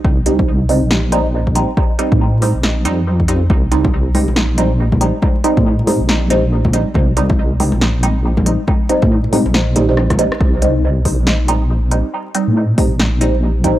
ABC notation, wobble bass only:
X:1
M:4/4
L:1/16
Q:"Swing 16ths" 1/4=139
K:Cdor
V:1 name="Wobble bass" clef=bass
C,,6- C,, B,,,8 z | z3 A,,4 B,,,3 F,,6 | C,,6- C,, B,,,8 z | z3 A,,4 B,,,8 z |
C,,6- C,, B,,,8 z | z3 A,,4 B,,,8 z | C,,6- C,, B,,,8 z | z3 A,,4 B,,,8 z |]